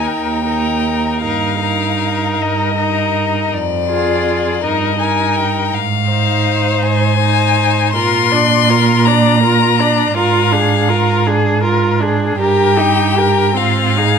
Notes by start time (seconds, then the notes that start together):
Already playing: D#4 A#4
0.07 D#2 G5
0.46 D#4 A#4
1.21 G2 D#4 A#4 F5
1.61 D#4 A#4
2.34 F5
2.38 G2 D#5
2.77 D#4 A#4
3.52 F2 D5
3.89 F4 G#4
4.63 G2 D#4 A#4 D#5
4.99 D#4 A#4 G#5
5.36 G5
5.72 G#2 F5
6.09 D#4 C5
6.82 G#2 G#5
7.20 D#4 C5
7.94 A#2 F4 A#4 C6
8.31 D4 D5
8.69 F4 A#4
9.05 D4 D5 A#5
9.43 F4 A#4
9.80 D4 D5
10.15 G#2 F4 A#4 F5
10.52 D4 G#4
10.89 F4 A#4
11.26 D4 G#4
11.63 F4 A#4
12.00 D4 G#4
12.38 G2 G4 A#4 G5
12.77 D#4 G4
13.15 G4 A#4
13.55 G#2 C4 F4 F5
13.97 D#4 G#4